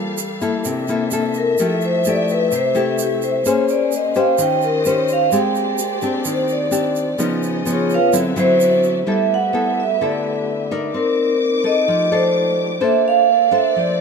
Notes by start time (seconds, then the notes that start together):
Already playing: G3 A#3 F4 G4 A4 F5
0.18 shaker
0.41 A#3 E4 A4, shaker
0.64 C3 D4 C5 E5, shaker
0.88 A#3 E4 A4, shaker
1.11 A#3 E4 A4, shaker
1.34 A#4, shaker
1.58 F3 A3 E4 G4, shaker
1.62 A4
1.81 C5, shaker
2.04 A3 E4 G4, shaker
2.09 D5
2.29 B4, shaker
2.52 C3, shaker
2.56 C5
2.75 A3 E4 G4, shaker
2.99 shaker
3.03 G4
3.22 C5, shaker
3.45 A#3 C#4 G#4 C5 C#5, shaker
3.68 D5, shaker
3.92 D#5, shaker
4.15 C#4 G4 C5 F5, shaker
4.38 D#3 F4 G4 D#5 G5, shaker
4.62 A#4, shaker
4.85 C#4 G4 C5, shaker
4.90 C#5
5.08 shaker
5.13 F5
5.32 G#3 A#3 C4 D4 G4 D5, shaker
5.36 G5
5.55 shaker
5.78 shaker
6.02 C4 D4 G4, shaker
6.25 D#3, shaker
6.31 C5
6.48 shaker
6.53 D5
6.71 C4 D4 G4, shaker
6.96 shaker
7.18 C#3 F3 B3 D#4 F4 C#5 D#5, shaker
7.43 shaker
7.65 F3 B3 D#4, shaker
7.72 C#4 F4 G#4 C#5
7.90 shaker
7.94 F4 B4 C#5 F5
8.13 D3 F#3 C4 E4 F#4 D5 E5, shaker
8.36 F#3 C4 E4 C5, shaker
8.60 shaker
8.84 shaker
9.06 G3 A3 B3 E4 G4 A4 B4 E5
9.12 E5
9.34 F#5
9.53 B3 E4 A4
9.80 E5
10.01 D3 B3 E4 A4 D5
10.71 D#4 A#4 D5
10.92 A#3 C4 D#4 C5 D6
10.97 A#4
11.64 D#4 A4 D#5
11.86 F3 A3 F4 G4
12.12 D#4 A4 C5 D5
12.79 A#3 D4 A4 C5 D5
12.84 E5
13.08 F5
13.51 D4 A4 C5 E5
13.76 F3 D5